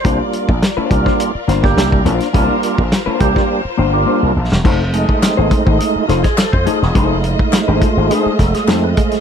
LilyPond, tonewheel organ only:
<<
  \new Staff \with { instrumentName = "Tonewheel organ" } { \time 4/4 \key c \dorian \tempo 4 = 104 c''16 r2. r8. | r1 | r4 c'16 b16 c'8 ees'8 f'16 gis'16 a'16 c''16 gis'8~ | gis'8 r8 f'16 ees'16 f'8 gis'8 a'16 gis'16 a'16 b'16 gis'8 | }
  \new Staff \with { instrumentName = "Tonewheel organ" } { \time 4/4 \key c \dorian <g bes d' f'>8. r8. <g bes d' f'>8. r8 <g bes d' g'>8. r8 | <g bes d' f'>8. r8. <g bes d' g'>8. r8 <g bes d' f'>8. r8 | r8 <gis a ees'>4. <gis a>8 r4. | <gis a ees'>1 | }
>>